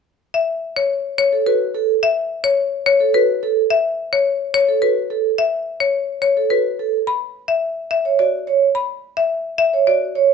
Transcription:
0.34 0.52 E5 medium
0.76 0.95 C#5 medium
1.18 1.36 C#5 medium
1.33 1.51 A4 medium
1.46 1.65 F#4 medium
1.46 1.65 B4 medium
1.75 1.93 A4 medium
2.03 2.21 E5 medium
2.44 2.62 C#5 medium
2.86 3.05 C#5 medium
3.00 3.19 A4 medium
3.14 3.33 F#4 medium
3.14 3.33 B4 medium
3.43 3.61 A4 medium
3.70 3.89 E5 medium
4.13 4.31 C#5 medium
4.54 4.73 C#5 medium
4.69 4.87 A4 medium
4.82 5.01 F#4 soft
4.82 5.01 B4 medium
5.10 5.29 A4 medium
5.38 5.57 E5 medium
5.80 5.99 C#5 medium
6.22 6.41 C#5 medium
6.37 6.55 A4 soft
6.50 6.69 F#4 soft
6.50 6.69 B4 soft
6.79 6.97 A4 soft
7.07 7.25 B5 medium
7.48 7.67 E5 medium
7.91 8.09 E5 medium
8.05 8.23 C#5 medium
8.19 8.38 F#4 soft
8.19 8.37 D5 soft
8.47 8.65 C#5 medium
8.75 8.93 B5 medium
9.17 9.35 E5 medium
9.58 9.77 E5 medium
9.73 9.92 C#5 medium
9.87 10.06 F#4 soft
9.87 10.06 D5 medium
10.15 10.34 C#5 medium

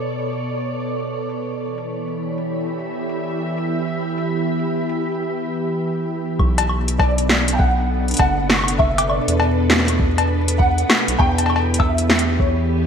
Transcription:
0.00 1.60 B2 medium
0.00 6.39 B3 medium
0.00 3.22 A4 medium
0.00 3.54 C#5 medium
0.00 3.28 D5 medium
0.28 closed hi-hat soft
0.58 closed hi-hat medium
0.99 closed hi-hat medium
1.29 closed hi-hat medium
1.59 6.39 E3 medium
1.78 closed hi-hat medium
1.88 7.76 B5 medium
2.08 closed hi-hat soft
2.15 6.39 G4 medium
2.21 7.79 E5 medium
2.38 closed hi-hat medium
2.79 closed hi-hat soft
3.09 closed hi-hat medium
3.58 closed hi-hat medium
3.88 closed hi-hat soft
4.18 closed hi-hat medium
4.59 closed hi-hat soft
4.89 closed hi-hat medium
6.39 8.15 B1 loud
6.39 11.19 B2 medium
6.39 kick loud
6.39 high woodblock soft
6.46 12.87 B3 medium
6.58 closed hi-hat medium
6.58 cowbell medium
6.69 high woodblock medium
6.88 closed hi-hat medium
6.95 12.87 D4 medium
6.95 12.78 B4 medium
6.95 7.55 D5 medium
6.99 12.87 A4 medium
6.99 kick loud
6.99 cowbell medium
7.18 closed hi-hat medium
7.29 snare loud
7.48 closed hi-hat medium
7.53 7.59 G5 medium
7.58 8.17 F#5 loud
7.58 kick loud
8.08 closed hi-hat soft
8.11 closed hi-hat soft
8.14 closed hi-hat soft
8.17 9.20 F#1 loud
8.17 8.81 F#5 loud
8.17 kick loud
8.17 closed hi-hat medium
8.17 cowbell medium
8.50 snare loud
8.50 high woodblock soft
8.54 high woodblock soft
8.59 high woodblock medium
8.64 high woodblock medium
8.68 closed hi-hat medium
8.78 9.10 E5 loud
8.78 kick loud
8.78 high woodblock soft
8.98 closed hi-hat medium
8.98 cowbell medium
9.08 10.63 D5 medium
9.08 high woodblock medium
9.28 10.85 E2 loud
9.28 closed hi-hat medium
9.40 cowbell medium
9.70 snare loud
9.70 high woodblock soft
9.73 snare medium
9.76 snare medium
9.79 snare medium
9.79 high woodblock soft
9.85 snare soft
9.85 closed hi-hat medium
9.90 high woodblock soft
9.99 kick loud
10.18 closed hi-hat soft
10.18 cowbell medium
10.48 closed hi-hat medium
10.58 11.21 F#5 loud
10.58 kick loud
10.78 closed hi-hat soft
10.90 snare loud
10.90 high woodblock medium
11.08 11.16 B1 medium
11.08 closed hi-hat medium
11.18 12.87 E2 loud
11.18 12.87 E3 medium
11.18 11.75 G5 loud
11.18 kick loud
11.18 high woodblock soft
11.38 12.87 G4 medium
11.38 closed hi-hat medium
11.38 cowbell soft
11.46 cowbell medium
11.46 high woodblock soft
11.56 cowbell medium
11.74 closed hi-hat medium
11.79 12.41 E5 loud
11.79 kick loud
11.79 cowbell medium
11.98 closed hi-hat medium
12.10 snare loud
12.19 closed hi-hat medium
12.28 12.87 E5 medium
12.39 12.87 C#5 loud
12.39 kick loud

